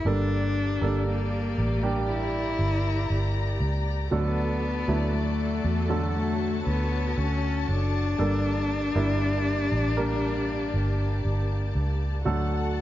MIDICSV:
0, 0, Header, 1, 5, 480
1, 0, Start_track
1, 0, Tempo, 1016949
1, 25, Time_signature, 4, 2, 24, 8
1, 6047, End_track
2, 0, Start_track
2, 0, Title_t, "String section"
2, 0, Program_c, 0, 48
2, 25, Note_on_c, 0, 58, 50
2, 25, Note_on_c, 0, 67, 62
2, 25, Note_on_c, 0, 74, 51
2, 987, Note_on_c, 0, 82, 62
2, 1926, Note_off_c, 0, 58, 0
2, 1926, Note_off_c, 0, 67, 0
2, 1926, Note_off_c, 0, 74, 0
2, 1936, Note_off_c, 0, 82, 0
2, 1941, Note_on_c, 0, 66, 61
2, 1941, Note_on_c, 0, 81, 63
2, 1943, Note_on_c, 0, 74, 53
2, 1944, Note_on_c, 0, 69, 51
2, 2894, Note_off_c, 0, 74, 0
2, 2905, Note_on_c, 0, 73, 57
2, 3844, Note_off_c, 0, 66, 0
2, 3845, Note_off_c, 0, 69, 0
2, 3855, Note_off_c, 0, 73, 0
2, 3863, Note_on_c, 0, 67, 59
2, 3863, Note_on_c, 0, 74, 51
2, 3865, Note_on_c, 0, 58, 56
2, 5764, Note_off_c, 0, 81, 0
2, 5765, Note_off_c, 0, 67, 0
2, 5765, Note_off_c, 0, 74, 0
2, 5766, Note_off_c, 0, 58, 0
2, 5783, Note_on_c, 0, 69, 55
2, 5784, Note_on_c, 0, 66, 58
2, 5785, Note_on_c, 0, 78, 52
2, 5785, Note_on_c, 0, 81, 62
2, 6047, Note_off_c, 0, 66, 0
2, 6047, Note_off_c, 0, 69, 0
2, 6047, Note_off_c, 0, 78, 0
2, 6047, Note_off_c, 0, 81, 0
2, 6047, End_track
3, 0, Start_track
3, 0, Title_t, "Cello"
3, 0, Program_c, 1, 42
3, 37, Note_on_c, 1, 62, 84
3, 511, Note_off_c, 1, 62, 0
3, 516, Note_on_c, 1, 58, 72
3, 972, Note_off_c, 1, 58, 0
3, 993, Note_on_c, 1, 64, 83
3, 1690, Note_off_c, 1, 64, 0
3, 1948, Note_on_c, 1, 59, 76
3, 2423, Note_on_c, 1, 57, 73
3, 2430, Note_off_c, 1, 59, 0
3, 2901, Note_off_c, 1, 57, 0
3, 2904, Note_on_c, 1, 57, 76
3, 3127, Note_off_c, 1, 57, 0
3, 3145, Note_on_c, 1, 59, 72
3, 3383, Note_on_c, 1, 61, 78
3, 3390, Note_off_c, 1, 59, 0
3, 3624, Note_on_c, 1, 62, 96
3, 3631, Note_off_c, 1, 61, 0
3, 5544, Note_off_c, 1, 62, 0
3, 6047, End_track
4, 0, Start_track
4, 0, Title_t, "Grand piano"
4, 0, Program_c, 2, 0
4, 0, Control_c, 2, 64, 127
4, 27, Note_on_c, 2, 43, 47
4, 27, Note_on_c, 2, 55, 52
4, 27, Note_on_c, 2, 58, 55
4, 28, Note_on_c, 2, 62, 50
4, 28, Note_on_c, 2, 69, 59
4, 31, Control_c, 2, 64, 0
4, 124, Control_c, 2, 64, 127
4, 368, Note_off_c, 2, 55, 0
4, 368, Note_off_c, 2, 58, 0
4, 368, Note_off_c, 2, 62, 0
4, 368, Note_off_c, 2, 69, 0
4, 384, Note_on_c, 2, 55, 55
4, 384, Note_on_c, 2, 58, 56
4, 386, Note_on_c, 2, 62, 52
4, 388, Note_on_c, 2, 69, 61
4, 727, Note_off_c, 2, 43, 0
4, 840, Note_off_c, 2, 55, 0
4, 841, Note_off_c, 2, 58, 0
4, 841, Note_off_c, 2, 62, 0
4, 842, Note_off_c, 2, 69, 0
4, 862, Note_on_c, 2, 55, 57
4, 863, Note_on_c, 2, 58, 51
4, 865, Note_on_c, 2, 67, 66
4, 866, Note_on_c, 2, 62, 52
4, 1775, Note_off_c, 2, 55, 0
4, 1776, Note_off_c, 2, 58, 0
4, 1777, Note_off_c, 2, 62, 0
4, 1777, Note_off_c, 2, 67, 0
4, 1941, Note_on_c, 2, 54, 59
4, 1943, Note_on_c, 2, 50, 50
4, 1943, Note_on_c, 2, 57, 52
4, 1943, Note_on_c, 2, 62, 52
4, 1944, Note_on_c, 2, 69, 63
4, 1951, Control_c, 2, 64, 0
4, 2038, Control_c, 2, 64, 127
4, 2285, Note_off_c, 2, 54, 0
4, 2286, Note_off_c, 2, 57, 0
4, 2286, Note_off_c, 2, 62, 0
4, 2287, Note_off_c, 2, 69, 0
4, 2303, Note_on_c, 2, 54, 58
4, 2303, Note_on_c, 2, 57, 53
4, 2305, Note_on_c, 2, 62, 52
4, 2306, Note_on_c, 2, 64, 64
4, 2645, Note_off_c, 2, 50, 0
4, 2760, Note_off_c, 2, 54, 0
4, 2760, Note_off_c, 2, 57, 0
4, 2761, Note_off_c, 2, 62, 0
4, 2761, Note_off_c, 2, 64, 0
4, 2781, Note_on_c, 2, 54, 59
4, 2782, Note_on_c, 2, 57, 56
4, 2783, Note_on_c, 2, 50, 58
4, 2784, Note_on_c, 2, 69, 66
4, 3695, Note_off_c, 2, 54, 0
4, 3696, Note_off_c, 2, 50, 0
4, 3696, Note_off_c, 2, 57, 0
4, 3696, Note_off_c, 2, 69, 0
4, 3864, Note_on_c, 2, 55, 56
4, 3865, Note_on_c, 2, 43, 49
4, 3865, Note_on_c, 2, 58, 50
4, 3866, Note_on_c, 2, 62, 55
4, 3867, Note_on_c, 2, 69, 62
4, 3871, Control_c, 2, 64, 0
4, 3940, Control_c, 2, 64, 127
4, 4206, Note_off_c, 2, 55, 0
4, 4207, Note_off_c, 2, 58, 0
4, 4207, Note_off_c, 2, 62, 0
4, 4208, Note_off_c, 2, 69, 0
4, 4224, Note_on_c, 2, 55, 67
4, 4225, Note_on_c, 2, 58, 63
4, 4226, Note_on_c, 2, 62, 64
4, 4228, Note_on_c, 2, 64, 80
4, 4566, Note_off_c, 2, 43, 0
4, 4680, Note_off_c, 2, 55, 0
4, 4681, Note_off_c, 2, 58, 0
4, 4681, Note_off_c, 2, 62, 0
4, 4683, Note_off_c, 2, 64, 0
4, 4705, Note_on_c, 2, 55, 68
4, 4705, Note_on_c, 2, 58, 67
4, 4706, Note_on_c, 2, 62, 62
4, 4707, Note_on_c, 2, 70, 77
4, 5617, Note_off_c, 2, 55, 0
4, 5617, Note_off_c, 2, 58, 0
4, 5617, Note_off_c, 2, 62, 0
4, 5618, Note_off_c, 2, 70, 0
4, 5782, Note_on_c, 2, 54, 65
4, 5784, Note_on_c, 2, 50, 56
4, 5784, Note_on_c, 2, 62, 60
4, 5785, Note_on_c, 2, 57, 60
4, 5785, Note_on_c, 2, 69, 74
4, 5791, Control_c, 2, 64, 0
4, 5871, Control_c, 2, 64, 127
4, 6047, Note_off_c, 2, 50, 0
4, 6047, Note_off_c, 2, 54, 0
4, 6047, Note_off_c, 2, 57, 0
4, 6047, Note_off_c, 2, 62, 0
4, 6047, Note_off_c, 2, 69, 0
4, 6047, End_track
5, 0, Start_track
5, 0, Title_t, "Fingered electric bass"
5, 0, Program_c, 3, 33
5, 23, Note_on_c, 3, 31, 74
5, 365, Note_off_c, 3, 31, 0
5, 385, Note_on_c, 3, 31, 73
5, 726, Note_off_c, 3, 31, 0
5, 746, Note_on_c, 3, 33, 74
5, 1206, Note_off_c, 3, 33, 0
5, 1222, Note_on_c, 3, 31, 73
5, 1447, Note_off_c, 3, 31, 0
5, 1463, Note_on_c, 3, 31, 72
5, 1687, Note_off_c, 3, 31, 0
5, 1701, Note_on_c, 3, 37, 74
5, 1926, Note_off_c, 3, 37, 0
5, 1943, Note_on_c, 3, 38, 76
5, 2285, Note_off_c, 3, 38, 0
5, 2304, Note_on_c, 3, 38, 69
5, 2645, Note_off_c, 3, 38, 0
5, 2664, Note_on_c, 3, 40, 72
5, 3126, Note_off_c, 3, 40, 0
5, 3147, Note_on_c, 3, 38, 74
5, 3369, Note_off_c, 3, 38, 0
5, 3387, Note_on_c, 3, 38, 72
5, 3609, Note_off_c, 3, 38, 0
5, 3628, Note_on_c, 3, 30, 70
5, 3849, Note_off_c, 3, 30, 0
5, 3867, Note_on_c, 3, 31, 74
5, 4207, Note_off_c, 3, 31, 0
5, 4226, Note_on_c, 3, 31, 74
5, 4566, Note_off_c, 3, 31, 0
5, 4587, Note_on_c, 3, 33, 74
5, 5047, Note_off_c, 3, 33, 0
5, 5068, Note_on_c, 3, 31, 77
5, 5290, Note_off_c, 3, 31, 0
5, 5308, Note_on_c, 3, 31, 70
5, 5530, Note_off_c, 3, 31, 0
5, 5547, Note_on_c, 3, 37, 74
5, 5769, Note_off_c, 3, 37, 0
5, 5787, Note_on_c, 3, 38, 71
5, 6047, Note_off_c, 3, 38, 0
5, 6047, End_track
0, 0, End_of_file